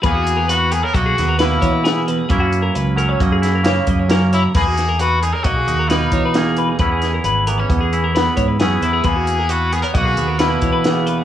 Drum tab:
HH |xxxxxxxxxx|xxxxxxxxxx|xxxxxxxxxx|xxxxxxxxxx|
SD |-----oo-o-|-----oo-o-|-o----o-o-|-o----o-o-|
BD |o---o--o--|o---o--o--|o---o--o--|o---o--o--|

HH |xxxxxxxxxx|
SD |------o-o-|
BD |o---o--o--|